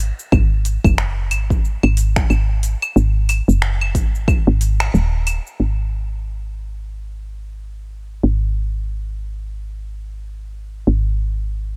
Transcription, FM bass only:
Already playing: G#1
0.32 G#1
0.84 F#1
1.31 G#1
1.83 G#1
2.30 G#1
2.96 G#1
3.48 F#1
3.95 G#1
4.47 G#1
4.94 D#1
5.60 G#1
8.23 G#1
10.87 G#1

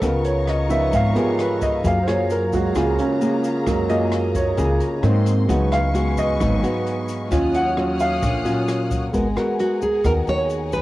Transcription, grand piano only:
0.04 A#4
0.25 C#5
0.49 D#5
0.69 F3 B3 D#4 E5
0.95 F5
1.13 G4
1.18 G#4
1.41 B4
1.62 D#5
1.86 F5
2.03 C5
2.08 C#5
2.32 A#4
2.53 G#3 A#3 F#4
2.77 F4
2.99 C#4
3.67 G#3 A#3
3.89 D#5
4.36 C#5
5.03 F#3 A#3 C4
5.49 F#3 B3 D#4
5.72 F5
6.18 D#5
6.40 F#3 B3 D#4
7.31 F#3 C#4 F4
7.55 F#5
8.00 F5
9.36 F#5

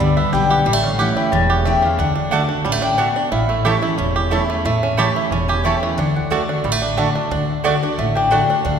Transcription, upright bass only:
0.00 C#2
0.33 B1
0.65 A1
1.32 E1
1.99 D2
2.65 A1
3.31 A1
3.98 E1
4.65 A1
5.31 E1
5.98 D2
6.64 A1
7.31 D2
7.98 A1
8.65 D2

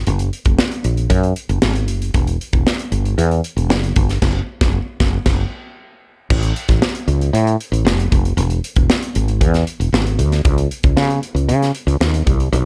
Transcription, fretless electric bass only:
0.07 F#1
0.46 F#1
0.85 A#1
1.10 F#2
1.49 F#1
1.63 G#1
1.89 F#1
2.14 E1
2.53 E1
2.92 G1
3.18 E2
3.57 E1
3.70 F#1
3.96 G1
4.22 F#1
4.61 F#1
5.00 F#1
5.26 F#1
6.30 A1
6.69 A1
7.08 C#2
7.33 A2
7.72 A1
7.85 F1
8.12 F1
8.37 E1
8.76 E1
9.16 G#1
9.41 E2
9.80 E1
9.93 G#1
10.19 D2
10.45 C#2
10.84 C#2
10.97 C#3
11.35 C#2
11.49 C#3
11.87 C#2
12.00 D#2
12.26 C2
12.52 B1

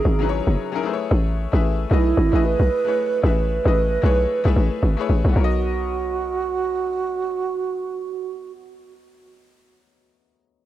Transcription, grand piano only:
Already playing: F#3 C#4 D#4 E4 G#4 A#4
0.19 F#3 C#4 D#4 E4 G#4 B4
0.29 C#5
0.72 F#3 C#4 D#4 E4 G#4 A#4
0.83 A3 E4 G#4 B4 C5
0.94 C#5
1.52 A3 E4 G#4 B4 E5
1.89 A3 E4 G#4 B4 D#5
2.31 A3 E4 G#4 B4 D#5
2.85 A3 E4 G#4 B4 C#5
3.22 A3 E4 G#4 B4 E5
3.64 A3 E4 G#4 B4 D#5
4.02 A3 E4 G#4 B4 C#5
4.44 A3 E4 G#4 B4 E5
4.97 A3 E4 G#4 B4 C#5
5.29 B3 F#4
5.36 A#4 C#5
5.44 D#5

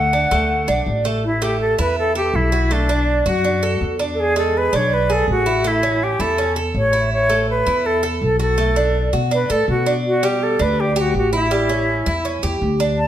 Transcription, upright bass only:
Already playing: D2
0.31 D2
0.68 B1
0.86 A1
1.79 E2
2.34 B1
3.26 F#2
3.81 E2
4.73 B1
5.28 A1
6.19 E2
6.74 A1
7.66 E2
8.22 B1
9.13 B2
9.50 A2
9.68 B2
10.60 D2
11.14 A1
12.06 E2
12.43 E2
12.61 D2

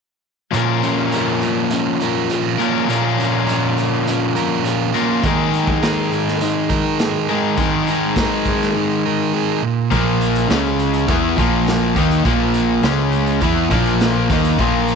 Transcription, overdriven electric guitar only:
0.51 A#2 F3 A#3 C#4 F4
0.55 A#4
2.58 A#2 F3 A#3 C#4 F4 A#4
2.86 A#2 F3 A#3 C#4 F4
2.91 A#4
4.94 F3 A#3 C#4 F4 A#4
4.98 A#2
5.24 D#3 G#3 D#4 G#4
5.28 A#4
7.29 D#3 G#3 D#4 G#4 A#4
7.56 D#3 G#3 D#4 G#4 A#4
9.91 A#2 F3 A#3
10.51 C#3 G#3 C#4
11.09 E3 B3 E4
11.38 A#2 F3 A#3
11.96 D#3 A#3 D#4
12.24 A#2 F3 A#3
12.83 C#3 G#3 C#4
13.42 E3 B3 E4
13.71 A#2 F3 A#3
14.31 D#3 A#3 D#4
14.60 A#2 F3 A#3

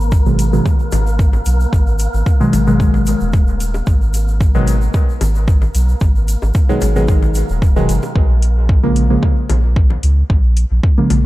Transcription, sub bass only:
Already playing: G#1
0.92 G#1
1.46 B1
1.73 G#1
2.14 G#1
2.53 G#1
3.21 D#1
3.87 G#1
5.21 G#1
5.75 B1
6.01 G#1
6.42 G#1
6.82 G#1
7.49 D#1
7.89 F#1
8.16 A#1
9.50 A#1
10.03 C#2
10.30 A#1
10.71 A#1
11.10 A#1

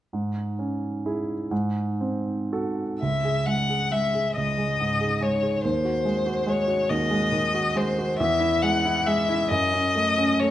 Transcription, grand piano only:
0.13 G#2
0.59 C#4
1.06 E4 G#4
1.51 G#2
2.01 C4
2.53 F#4 A4
3.02 C#2
3.25 G#4
3.47 G#3
3.69 G#4
3.91 G#3
4.14 G#4
4.37 C#2
4.58 G#3
4.80 G#2
5.01 G#4
5.21 G#3
5.42 G#4
5.64 D#2
5.85 F#4
6.05 G#3
6.26 F#4
6.46 G#3
6.68 F#4
6.90 D#2
7.10 G#3
7.32 D#3
7.54 F#4
7.75 G#3
7.98 F#4
8.20 E2
8.40 E4
8.63 G#3
8.85 E4
9.07 G#3
9.29 E4
9.51 F#2
9.73 C#4
9.95 A3
10.18 C#4
10.42 A3

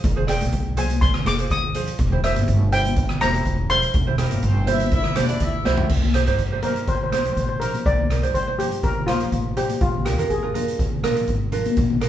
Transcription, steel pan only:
0.29 G5
0.79 G#5
1.01 C6
1.27 D6
1.51 D#6
2.24 E5
2.73 G5
3.21 A#5
3.70 C6
6.63 A#4
6.88 C5
6.95 C5
7.04 C5
7.10 C5
7.18 C5
7.26 C5
7.33 C5
7.41 C5
7.49 C5
7.60 A#4
7.86 D5
8.34 C5
8.59 G4
8.84 A#4
9.07 F4
9.57 G4
9.81 F4
10.05 G4
10.30 G#4

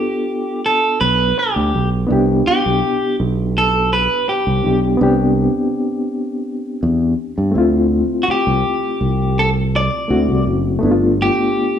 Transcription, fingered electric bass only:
1.01 B1
1.56 D2
1.74 B1
2.10 C2
2.48 muted fingered electric bass stroke
2.66 B1
3.20 B1
4.47 C2
4.65 B1
5.01 C2
6.83 E2
7.38 G2
7.55 D2
8.28 muted fingered electric bass stroke
8.47 C2
9.01 C2
10.10 D2
10.29 C2
10.47 F#1
10.83 G1

